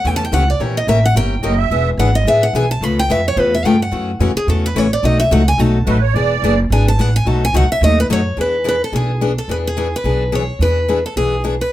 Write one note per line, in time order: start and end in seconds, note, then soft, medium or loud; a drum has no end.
0.04 0.31 E2 medium
0.04 0.23 C#3 medium
0.04 0.23 E3 medium
0.04 0.23 A3 medium
0.04 0.23 C#4 medium
0.04 0.23 G4 medium
0.04 0.15 G5 medium
0.16 0.24 A5 loud
0.25 0.33 G5 medium
0.32 0.59 C#2 medium
0.32 0.42 C#3 medium
0.32 0.43 E3 medium
0.32 0.43 A3 medium
0.32 0.43 C#4 medium
0.32 0.43 G4 loud
0.32 0.48 F#5 loud
0.50 0.61 D5 medium
0.59 0.86 A#1 medium
0.59 0.78 E3 medium
0.59 0.79 A#3 medium
0.59 0.79 C#4 medium
0.59 0.79 G4 medium
0.59 0.79 A#4 medium
0.59 0.76 C#5 medium
0.77 0.88 D#5 loud
0.87 1.14 A1 medium
0.87 0.98 E3 medium
0.87 0.98 A#3 medium
0.87 0.98 C#4 medium
0.87 0.98 G4 medium
0.87 0.98 A#4 loud
0.87 1.04 E5 medium
1.05 1.16 F#5 loud
1.15 1.42 G1 medium
1.15 1.34 E3 medium
1.15 1.34 A#3 medium
1.15 1.34 C#4 medium
1.15 1.34 G4 medium
1.15 1.34 A#4 medium
1.15 1.68 G5 loud
1.42 1.69 F#1 medium
1.42 1.53 E3 medium
1.42 1.53 A#3 medium
1.42 1.53 C#4 loud
1.42 1.53 G4 medium
1.42 1.54 A#4 medium
1.42 1.59 D#5 medium
1.58 1.90 E5 loud
1.70 1.97 E1 medium
1.70 1.89 E3 medium
1.70 1.90 B3 medium
1.70 1.89 D4 medium
1.70 1.90 G#4 medium
1.97 2.24 G#1 loud
1.97 2.09 E3 loud
1.97 2.09 B3 medium
1.97 2.09 D4 loud
1.97 2.09 G#4 loud
1.97 2.14 F#5 medium
2.15 2.26 D#5 loud
2.25 2.52 A1 medium
2.25 2.45 E3 medium
2.25 2.45 B3 medium
2.25 2.45 D4 medium
2.25 2.45 G#4 medium
2.25 2.42 E5 loud
2.43 2.54 F#5 medium
2.53 2.80 B1 medium
2.53 2.64 E3 medium
2.53 2.65 B3 medium
2.53 2.65 D4 medium
2.53 2.65 G#4 medium
2.53 2.70 G#5 medium
2.71 2.84 A5 loud
2.81 3.08 C#2 medium
2.81 3.00 C#3 medium
2.81 3.00 A3 medium
2.81 3.00 B3 medium
2.81 3.01 F4 medium
2.81 3.01 B4 medium
2.81 2.98 B5 loud
2.99 3.10 G5 loud
3.09 3.36 F2 medium
3.09 3.20 C#3 medium
3.09 3.20 A3 medium
3.09 3.20 B3 medium
3.09 3.20 F4 medium
3.09 3.20 B4 loud
3.09 3.26 E5 medium
3.28 3.40 C#5 medium
3.36 3.63 E2 medium
3.36 3.55 C#3 medium
3.36 3.55 A3 medium
3.36 3.55 B3 medium
3.36 3.56 F4 medium
3.36 3.56 B4 medium
3.36 3.53 B4 medium
3.55 3.66 E5 medium
3.64 3.91 G2 medium
3.64 3.75 C#3 medium
3.64 3.75 A3 medium
3.64 3.75 B3 medium
3.64 3.75 F4 medium
3.64 3.75 B4 loud
3.64 3.81 G5 loud
3.82 4.18 F#5 medium
3.91 4.19 F#2 medium
3.91 4.10 C#3 medium
3.91 4.10 E3 medium
3.91 4.11 A3 medium
3.91 4.11 C#4 medium
3.91 4.11 F#4 medium
4.19 4.34 F2 medium
4.19 4.30 C#3 medium
4.19 4.30 E3 medium
4.19 4.31 A3 medium
4.19 4.31 C#4 medium
4.19 4.31 F#4 loud
4.35 4.48 G#4 medium
4.35 muted upright bass stroke soft
4.47 4.74 E2 medium
4.47 4.66 C#3 medium
4.47 4.66 E3 medium
4.47 4.66 A3 medium
4.47 4.67 C#4 medium
4.47 4.67 F#4 medium
4.47 4.64 A4 medium
4.66 4.78 B4 medium
4.75 5.02 A1 medium
4.75 4.86 C#3 medium
4.75 4.86 E3 loud
4.75 4.86 A3 medium
4.75 4.86 C#4 loud
4.75 4.86 F#4 medium
4.75 4.92 C#5 medium
4.93 5.04 D5 medium
5.03 5.30 B1 medium
5.03 5.22 B2 medium
5.03 5.22 F#3 medium
5.03 5.22 A3 medium
5.03 5.22 D#4 medium
5.03 5.22 F#4 medium
5.03 5.19 D#5 medium
5.20 5.31 E5 loud
5.31 5.57 C#2 medium
5.31 5.41 B2 medium
5.31 5.41 F#3 medium
5.31 5.42 A3 medium
5.31 5.42 D#4 loud
5.31 5.42 F#4 loud
5.31 5.47 F#5 medium
5.48 5.60 G#5 loud
5.58 5.85 B1 loud
5.58 5.77 B2 medium
5.58 5.77 F#3 medium
5.58 5.77 A3 medium
5.58 5.77 D#4 medium
5.58 5.78 F#4 medium
5.58 6.15 A5 loud
5.86 6.13 A1 medium
5.86 5.97 B2 medium
5.86 5.97 F#3 medium
5.86 5.97 A3 medium
5.86 5.97 D#4 loud
5.86 5.97 F#4 loud
5.86 6.02 B4 medium
6.01 6.14 C#5 loud
6.13 6.41 E1 medium
6.13 6.33 E3 medium
6.13 6.33 B3 medium
6.13 6.34 D4 medium
6.13 6.34 G#4 medium
6.13 6.60 D5 loud
6.42 6.69 F#1 medium
6.42 6.53 E3 medium
6.42 6.53 B3 loud
6.42 6.53 D4 loud
6.42 6.53 G#4 medium
6.70 6.97 G#1 loud
6.70 6.89 E3 medium
6.70 6.89 B3 medium
6.70 6.90 D4 medium
6.70 6.90 G#4 medium
6.70 6.86 G#5 medium
6.88 7.01 A5 loud
6.98 7.25 A1 medium
6.98 7.08 E3 medium
6.98 7.09 B3 medium
6.98 7.09 D4 medium
6.98 7.09 G#4 medium
6.98 7.14 F#5 medium
7.16 7.28 G#5 loud
7.25 7.52 B1 medium
7.25 7.44 B2 medium
7.25 7.44 F#3 medium
7.25 7.44 A3 medium
7.25 7.45 D#4 medium
7.25 7.44 F#4 medium
7.25 7.42 A5 loud
7.45 7.55 G#5 loud
7.53 7.68 C#2 medium
7.53 7.64 B2 loud
7.53 7.64 F#3 medium
7.53 7.64 A3 loud
7.53 7.64 D#4 loud
7.53 7.64 F#4 loud
7.53 7.70 F#5 medium
7.69 7.82 E5 loud
7.69 muted upright bass stroke soft
7.81 8.08 D#2 loud
7.81 8.00 B2 medium
7.81 8.00 F#3 medium
7.81 8.00 A3 medium
7.81 8.00 D#4 medium
7.81 8.00 F#4 medium
7.81 7.98 D#5 loud
8.00 8.06 B4 loud
8.09 8.36 F#2 medium
8.09 8.19 B2 medium
8.09 8.20 F#3 medium
8.09 8.20 A3 medium
8.09 8.20 D#4 loud
8.09 8.20 F#4 loud
8.09 8.37 C#5 loud
8.37 8.81 E2 medium
8.37 8.55 E3 medium
8.37 8.55 B3 medium
8.37 8.56 D4 medium
8.37 8.56 G#4 medium
8.41 8.67 B4 medium
8.64 8.74 E3 medium
8.64 8.75 B3 medium
8.64 8.75 D4 medium
8.64 8.75 G#4 medium
8.69 8.83 B4 medium
8.84 8.93 A4 medium
8.92 9.37 B1 medium
8.92 9.11 E3 medium
8.92 9.11 B3 medium
8.92 9.11 D4 medium
8.92 9.11 G#4 medium
8.92 9.20 G#4 medium
9.21 9.31 E3 medium
9.21 9.31 B3 medium
9.21 9.31 D4 medium
9.21 9.31 G#4 medium
9.38 9.50 A4 medium
9.48 9.93 E2 medium
9.48 9.67 E3 medium
9.48 9.67 B3 medium
9.48 9.67 D4 medium
9.48 9.67 G#4 medium
9.48 9.56 B4 medium
9.67 9.94 G#4 medium
9.77 9.87 E3 medium
9.77 9.87 B3 medium
9.77 9.87 D4 medium
9.77 9.87 G#4 medium
9.96 10.35 B4 medium
10.04 10.48 B1 medium
10.04 10.22 E3 medium
10.04 10.23 B3 medium
10.04 10.23 D4 medium
10.04 10.23 G#4 medium
10.32 10.42 E3 medium
10.32 10.42 B3 medium
10.32 10.42 D4 medium
10.32 10.42 G#4 medium
10.32 10.62 C#5 medium
10.59 11.04 E2 medium
10.59 10.78 E3 medium
10.59 10.79 B3 medium
10.59 10.79 D4 medium
10.59 10.79 G#4 medium
10.59 11.05 B4 medium
10.88 10.98 E3 medium
10.88 10.98 B3 medium
10.88 10.98 D4 medium
10.88 10.99 G#4 medium
11.06 11.17 A4 medium
11.16 11.60 B1 medium
11.16 11.35 E3 medium
11.16 11.35 B3 medium
11.16 11.35 D4 medium
11.16 11.42 G#4 medium
11.16 11.35 G#4 medium
11.44 11.54 E3 medium
11.44 11.54 B3 medium
11.44 11.54 D4 medium
11.44 11.54 G#4 medium
11.61 11.72 B4 medium